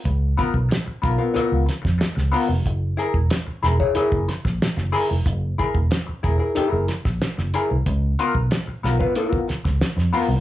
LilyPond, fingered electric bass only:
\new Staff \with { instrumentName = "Fingered electric bass" } { \clef bass \time 4/4 \key des \mixolydian \tempo 4 = 92 des,8 r16 ces,16 r8 ces,16 r8 des,16 r16 f,16 r16 des,16 r16 f,,16 | ges,,8 r16 fes,,16 r8 fes,,16 r8 ges,,16 r16 bes,,16 r16 ges,,16 r16 f,,16 | ges,,8 r16 fes,,16 r8 fes,,16 r8 ges,,16 r16 bes,,16 r16 ges,,16 r16 c,16 | des,8 r16 ces,16 r8 ces,16 r4 des,16 r16 f,16 r16 c,16 | }